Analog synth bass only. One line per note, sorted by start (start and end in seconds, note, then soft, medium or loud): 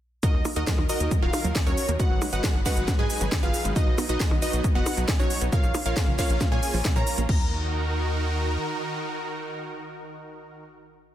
0.34 0.42 D#2 medium
0.56 0.64 D#2 medium
0.78 0.87 D#2 medium
1.00 1.09 D#2 medium
1.22 1.31 D#1 medium
1.44 1.53 D#2 medium
1.66 1.75 D#2 medium
1.89 1.97 D#2 medium
2.11 2.19 G#1 medium
2.33 2.41 G#1 medium
2.55 2.63 G#1 medium
2.77 2.85 G#1 medium
2.99 3.07 G#2 medium
3.21 3.29 G#1 medium
3.43 3.51 G#1 medium
3.65 3.73 G#1 medium
3.87 3.95 B1 medium
4.09 4.17 B1 medium
4.31 4.39 B1 medium
4.53 4.62 B1 medium
4.75 4.84 F#1 medium
4.97 5.06 B1 medium
5.19 5.28 B1 medium
5.41 5.50 B1 medium
5.64 5.72 A#1 medium
5.86 5.94 A#1 medium
6.08 6.16 A#1 medium
6.30 6.38 A#1 medium
6.52 6.60 A#2 medium
6.74 6.82 A#1 medium
6.96 7.04 A#2 medium
7.18 7.26 A#1 medium
7.29 8.57 D#2 loud